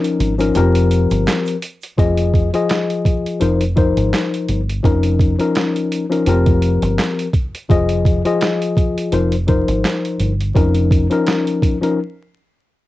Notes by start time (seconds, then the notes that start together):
Already playing: F3 C#4 D#4 A#4
0.04 closed hi-hat, shaker
0.20 G#1, closed hi-hat
0.38 F3 C#4 D#4 A#4, closed hi-hat, shaker
0.55 F1 F3 C4 G4 A#4, closed hi-hat, shaker
0.75 closed hi-hat, shaker
0.91 closed hi-hat, shaker
1.10 G1, closed hi-hat, shaker
1.27 snare, clap, closed hi-hat, shaker
1.46 closed hi-hat, shaker
1.62 closed hi-hat, shaker
1.82 closed hi-hat, shaker
1.98 F1 F3 F4 G#4 D#5, kick, closed hi-hat
2.17 closed hi-hat
2.34 kick, closed hi-hat
2.53 F3 F4 G#4 D#5, closed hi-hat
2.69 snare, clap, closed hi-hat
2.90 closed hi-hat
3.05 kick, closed hi-hat
3.26 closed hi-hat
3.40 F1 F3 D#4 A#4 C5, closed hi-hat
3.61 closed hi-hat
3.76 F3 D#4 A#4 C5, kick, closed hi-hat
3.97 G#1, closed hi-hat
4.14 snare, clap, closed hi-hat
4.34 closed hi-hat
4.48 G1, closed hi-hat
4.69 closed hi-hat
4.83 F1 F3 C#4 D#4 A#4, kick, closed hi-hat
5.03 closed hi-hat
5.20 kick, closed hi-hat
5.39 F3 C#4 D#4 A#4, closed hi-hat
5.55 snare, clap, closed hi-hat
5.76 closed hi-hat
5.92 closed hi-hat
6.10 F3 C#4 D#4 A#4, closed hi-hat
6.26 F1 F3 C4 G4 A#4, closed hi-hat
6.46 kick, closed hi-hat
6.62 closed hi-hat
6.82 G1, closed hi-hat
6.99 snare, clap, closed hi-hat
7.19 closed hi-hat
7.33 kick, closed hi-hat
7.55 closed hi-hat
7.69 F1 F3 F4 G#4 D#5, kick, closed hi-hat
7.89 closed hi-hat
8.05 kick, closed hi-hat
8.25 F3 F4 G#4 D#5, closed hi-hat
8.41 snare, clap, closed hi-hat
8.62 closed hi-hat
8.77 kick, closed hi-hat
8.98 closed hi-hat
9.12 F1 F3 D#4 A#4 C5, closed hi-hat
9.32 closed hi-hat
9.47 F3 D#4 A#4 C5, kick, closed hi-hat
9.68 G#1, closed hi-hat
9.85 snare, clap, closed hi-hat
10.05 closed hi-hat
10.20 G1, closed hi-hat
10.40 closed hi-hat
10.54 F1 F3 C#4 D#4 A#4, kick, closed hi-hat
10.74 closed hi-hat
10.91 kick, closed hi-hat
11.10 F3 C#4 D#4 A#4, closed hi-hat
11.27 snare, clap, closed hi-hat
11.47 closed hi-hat
11.62 kick, closed hi-hat
11.81 F3 C#4 D#4 A#4, closed hi-hat